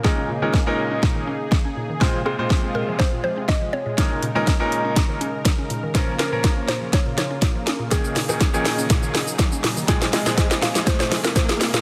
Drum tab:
HH |----------------|----------------|x-x-x-x-x-x-x-x-|x-x-x-x-x-x-x-x-|
SH |----------------|----------------|----------------|----------------|
SD |o---o---o---o---|o---o---o---o---|o---o---o---o---|o-o-o-o-o-o-o-o-|
BD |o---o---o---o---|o---o---o---o---|o---o---o---o---|o---o---o---o---|

HH |x-o-x-o-x-o-x-o-|x-o-x-o-x-o-x-o-|
SH |xxxxxxxxxxxxxxxx|xxxxxxxxxxxxxxxx|
SD |o-o-o-o-o-o-o-o-|oooooooooooooooo|
BD |o---o---o---o---|o---o---o---o---|